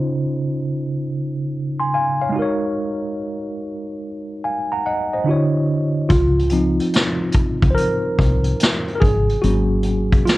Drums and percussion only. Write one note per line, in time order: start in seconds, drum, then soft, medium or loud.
6.10 kick loud
6.10 closed hi-hat medium
6.39 closed hi-hat soft
6.50 closed hi-hat medium
6.80 closed hi-hat soft
6.94 snare loud
6.94 closed hi-hat medium
7.32 kick medium
7.32 closed hi-hat medium
7.62 kick medium
7.62 closed hi-hat medium
7.77 closed hi-hat medium
8.19 kick medium
8.19 closed hi-hat medium
8.44 closed hi-hat soft
8.60 snare loud
8.60 closed hi-hat medium
8.88 closed hi-hat soft
9.02 kick loud
9.02 closed hi-hat medium
9.29 closed hi-hat soft
9.43 closed hi-hat medium
9.83 closed hi-hat medium
10.13 kick medium
10.13 closed hi-hat medium
10.27 snare loud
10.27 closed hi-hat medium